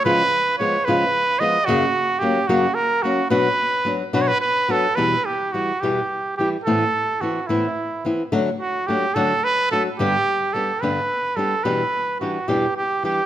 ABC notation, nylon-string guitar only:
X:1
M:6/8
L:1/8
Q:3/8=72
K:Bm
V:1 name="Nylon-string guitar"
[C,^E,^G,B,^E] z [E,G,B,E] [C,E,G,B,E] z [E,G,B,E] | [F,,C,F,^A,CF] z [F,A,CF] [F,,C,F,A,CF] z [F,A,CF] | [B,,F,B,DF] z [F,B,DF] [B,,F,B,DF] z [F,B,DF] | [K:Em] [E,,B,,E,G,EG] z [E,G,EG] [E,,B,,E,G,EG] z [E,G,EG] |
[A,,E,B,CE] z [E,B,CE] [A,,E,B,CE] z [E,B,CE] | [D,F,A,DF] z [F,A,DF] [D,F,A,DF] z [F,A,DF] | [G,,D,G,B,DG] z [G,B,DG] [G,,D,G,B,DG] z [G,B,DG] | [E,,B,,E,G,DG] z [E,G,DG] [E,,B,,E,G,DG] z [E,G,DG] |]